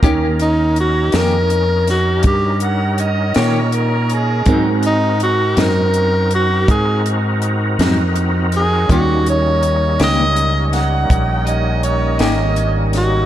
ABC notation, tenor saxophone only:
X:1
M:12/8
L:1/8
Q:3/8=54
K:Ab
V:1 name="Tenor saxophone"
z E _G B2 G =G z4 z | z E _G B2 G A z4 A | _G d2 e2 z6 G |]